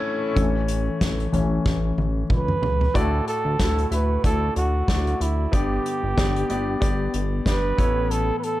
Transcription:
0.00 0.36 A3 loud
0.00 0.37 C#4 loud
0.00 0.38 E4 loud
0.00 0.39 C#5 loud
0.36 0.89 A1 loud
0.36 0.80 E3 soft
0.36 0.80 A3 soft
0.36 0.81 C#4 soft
0.36 kick medium
0.36 closed hi-hat medium
0.68 closed hi-hat medium
1.01 1.28 A1 medium
1.01 kick loud
1.01 snare loud
1.01 closed hi-hat medium
1.20 closed hi-hat soft
1.32 1.59 A1 medium
1.32 1.62 E3 soft
1.32 1.62 A3 soft
1.32 1.62 C#4 soft
1.32 closed hi-hat medium
1.32 floor tom medium
1.66 1.92 A1 loud
1.66 kick loud
1.66 snare soft
1.97 2.24 A1 medium
1.97 high tom medium
2.30 2.56 C#2 medium
2.30 2.99 B4 medium
2.30 kick medium
2.30 mid tom medium
2.48 mid tom medium
2.62 2.89 C#2 medium
2.62 floor tom medium
2.81 floor tom medium
2.94 3.21 D2 loud
2.94 3.87 A2 soft
2.94 3.48 A3 medium
2.94 3.48 E4 medium
2.94 3.48 F#4 medium
2.94 3.27 A4 medium
2.94 3.49 D5 medium
2.94 kick medium
2.94 closed hi-hat medium
3.28 3.88 A4 medium
3.28 closed hi-hat medium
3.45 3.57 D2 medium
3.59 3.86 D2 medium
3.59 3.86 A3 medium
3.59 3.86 E4 medium
3.59 3.86 F#4 medium
3.59 3.86 A4 medium
3.59 kick loud
3.59 snare medium
3.59 closed hi-hat medium
3.78 closed hi-hat soft
3.90 4.18 D2 medium
3.90 4.18 A3 medium
3.90 4.18 E4 soft
3.90 4.18 F#4 soft
3.90 4.22 B4 medium
3.90 4.18 E5 medium
3.90 closed hi-hat medium
4.23 4.50 D2 medium
4.23 4.77 A3 medium
4.23 4.77 E4 medium
4.23 4.77 F#4 soft
4.23 4.54 A4 medium
4.23 4.78 D5 medium
4.23 kick loud
4.23 closed hi-hat medium
4.56 4.83 D2 medium
4.56 5.23 F#4 medium
4.56 closed hi-hat medium
4.88 5.14 D2 loud
4.88 5.42 A3 medium
4.88 5.42 E4 soft
4.88 5.42 F#4 medium
4.88 5.42 D5 medium
4.88 kick medium
4.88 snare medium
4.88 closed hi-hat medium
5.07 closed hi-hat soft
5.21 5.47 D2 medium
5.21 5.57 E4 medium
5.21 closed hi-hat medium
5.52 5.79 G1 medium
5.52 6.45 G2 medium
5.52 6.45 D3 soft
5.52 6.06 B3 medium
5.52 6.06 D4 medium
5.52 6.06 G4 medium
5.52 7.21 G4 medium
5.52 6.06 D5 medium
5.52 kick medium
5.52 closed hi-hat medium
5.86 closed hi-hat medium
6.03 6.15 G1 medium
6.17 6.44 G1 medium
6.17 6.44 B3 medium
6.17 6.44 D4 medium
6.17 6.44 G4 medium
6.17 6.45 D5 medium
6.17 kick loud
6.17 snare loud
6.17 closed hi-hat medium
6.36 closed hi-hat soft
6.49 6.76 G1 medium
6.49 6.76 B3 medium
6.49 6.76 D4 medium
6.49 6.76 G4 medium
6.49 6.77 D5 medium
6.49 closed hi-hat medium
6.80 7.08 G1 loud
6.80 7.35 B3 medium
6.80 7.35 D4 medium
6.80 7.35 G4 medium
6.80 7.35 D5 medium
6.80 kick loud
6.80 closed hi-hat medium
7.14 7.41 G1 loud
7.14 closed hi-hat medium
7.46 7.72 G1 medium
7.46 7.76 B3 medium
7.46 7.78 D4 medium
7.46 7.79 G4 medium
7.46 8.13 B4 medium
7.46 7.79 D5 medium
7.46 kick medium
7.46 snare medium
7.46 closed hi-hat medium
7.77 8.31 A1 medium
7.77 8.60 A2 soft
7.77 8.60 E3 soft
7.77 8.58 B3 medium
7.77 8.58 E4 medium
7.77 8.58 A4 medium
7.77 8.58 C#5 medium
7.77 kick medium
7.77 closed hi-hat medium
8.11 8.37 A4 medium
8.11 closed hi-hat medium
8.39 8.46 B4 medium
8.43 8.60 A4 loud
8.43 closed hi-hat medium

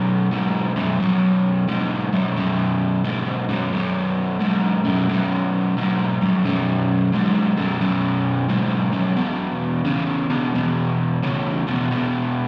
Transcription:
0.00 0.26 B1 medium
0.00 0.27 F#2 medium
0.31 0.71 B1 medium
0.31 0.71 G#2 medium
0.76 0.97 B1 medium
0.76 0.98 F#2 medium
1.00 1.63 B1 medium
1.00 1.63 F#2 loud
1.68 2.08 B1 medium
1.68 2.08 G#2 medium
2.13 2.34 B1 medium
2.13 2.34 F#2 medium
2.36 3.00 B1 medium
2.36 3.00 F#2 medium
3.04 3.44 B1 medium
3.04 3.44 G#2 loud
3.49 3.70 B1 medium
3.49 3.70 F#2 medium
3.73 4.36 B1 medium
3.73 4.36 F#2 medium
4.40 4.80 B1 medium
4.40 4.81 G#2 medium
4.84 5.06 B1 medium
4.84 5.06 F#2 medium
5.09 5.72 B1 medium
5.09 5.72 F#2 medium
5.77 6.17 B1 medium
5.77 6.17 G#2 medium
6.21 6.43 B1 medium
6.21 6.43 F#2 medium
6.45 7.08 B1 medium
6.45 7.09 F#2 medium
7.13 7.53 B1 medium
7.13 7.53 G#2 loud
7.57 7.79 B1 medium
7.57 7.79 F#2 medium
7.80 8.44 B1 medium
7.80 8.45 F#2 medium
8.48 8.89 B1 medium
8.48 8.89 G#2 medium
8.92 9.14 B1 medium
8.92 9.15 F#2 medium
9.17 9.80 E2 medium
9.17 9.81 B2 medium
9.85 10.25 E2 medium
9.85 10.25 C#3 medium
10.30 10.51 E2 medium
10.30 10.51 B2 medium
10.54 11.17 E2 medium
10.54 11.18 B2 medium
11.23 11.63 E2 medium
11.23 11.63 C#3 medium
11.67 11.88 E2 medium
11.67 11.88 B2 medium
11.91 12.48 E2 medium
11.91 12.48 B2 medium

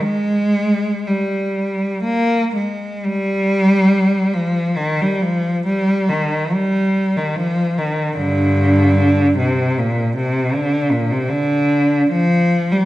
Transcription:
0.01 1.05 G#3 medium
1.06 2.03 G3 medium
2.03 2.52 A#3 medium
2.55 3.04 G#3 medium
3.04 4.32 G3 medium
4.33 4.77 F3 medium
4.77 4.98 D#3 medium
5.01 5.21 G3 medium
5.22 5.64 F3 medium
5.66 6.07 G3 medium
6.09 6.51 D#3 medium
6.52 7.15 G3 medium
7.16 7.36 D#3 medium
7.36 7.77 F3 medium
7.78 8.19 D#3 medium
8.17 9.33 G2 medium
8.17 9.34 D3 medium
9.38 9.77 C3 medium
9.78 10.17 A#2 medium
10.16 10.54 C3 medium
10.54 10.93 D3 medium
10.92 11.12 A#2 medium
11.12 11.31 C3 medium
11.29 12.09 D3 medium
12.10 12.70 F3 medium
12.72 12.85 G3 medium

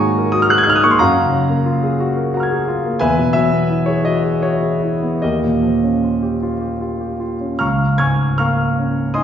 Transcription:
0.00 0.96 G#2 medium
0.00 1.02 D#3 soft
0.00 1.01 F#3 soft
0.00 0.84 A#3 soft
0.00 0.67 D#4 medium
0.00 0.27 F#4 medium
0.00 0.11 G#4 soft
0.00 1.02 C#5 medium
0.00 1.02 D#5 medium
0.00 1.02 G#5 medium
0.00 0.30 A#5 medium
0.00 0.33 C#6 medium
0.00 0.32 D#6 medium
0.18 0.44 A#4 soft
0.32 0.60 F#4 medium
0.32 0.44 D#6 medium
0.42 0.52 F6 medium
0.50 0.76 G#4 soft
0.50 0.58 F#6 medium
0.58 0.65 G#6 medium
0.64 0.93 D#4 soft
0.64 0.70 F#6 medium
0.70 0.76 F6 medium
0.76 0.83 D#6 medium
0.84 1.00 A#3 soft
0.84 0.91 C#6 medium
0.91 0.99 C6 medium
0.99 2.98 F#2 medium
0.99 2.64 F5 medium
0.99 2.33 F#5 medium
0.99 2.35 A#5 medium
1.18 1.44 C#3 soft
1.33 1.60 F#3 soft
1.50 1.76 A#3 soft
1.66 1.93 F4 soft
1.83 2.10 G#4 medium
2.00 2.27 F#4 medium
2.17 2.44 A#4 soft
2.34 2.61 F#4 medium
2.34 2.98 F#5 soft
2.34 2.99 A#5 soft
2.40 3.01 F6 soft
2.40 3.02 G#6 soft
2.51 2.78 G#4 soft
2.68 2.95 F4 soft
2.85 3.02 A#3 soft
2.99 5.18 E2 soft
2.99 3.33 B4 medium
2.99 3.32 E5 medium
2.99 3.35 G#5 medium
3.18 3.46 B2 soft
3.33 3.63 F#3 soft
3.33 3.87 E5 medium
3.52 3.81 B3 soft
3.70 3.99 E4 soft
3.86 4.17 G#4 soft
3.86 4.05 C#5 medium
4.05 4.36 F#4 soft
4.05 4.43 D#5 medium
4.24 4.54 G#4 soft
4.42 4.74 F#4 soft
4.42 5.22 C#5 medium
4.63 4.94 G#4 soft
4.83 5.15 E4 soft
5.03 5.23 B3 soft
5.22 7.58 D#2 soft
5.22 6.21 G4 soft
5.22 7.17 A#4 soft
5.22 7.20 D#5 medium
5.43 5.74 A#2 soft
5.63 5.94 F3 soft
5.83 6.14 C#4 soft
6.03 6.34 F4 soft
6.22 6.53 G4 soft
6.42 6.73 F4 soft
6.61 6.92 G4 soft
6.81 7.12 F4 soft
7.00 7.33 G4 soft
7.20 7.53 F4 soft
7.41 7.61 C#4 soft
7.59 9.23 C#2 soft
7.59 7.98 F5 soft
7.59 7.98 A#5 soft
7.59 7.98 C#6 soft
7.59 7.98 F6 medium
7.98 8.62 G#2 soft
7.98 8.36 G#5 medium
7.98 8.36 C#6 medium
7.98 8.36 F6 soft
7.98 8.38 G#6 medium
8.38 9.01 A#3 soft
8.38 9.12 F5 soft
8.38 9.12 A#5 soft
8.38 9.12 C#6 soft
8.38 9.15 F6 medium
8.79 9.23 C#4 soft
9.14 9.23 D#4 soft
9.14 9.23 D#5 medium
9.14 9.23 G#5 medium
9.14 9.23 C6 medium
9.14 9.23 D#6 medium

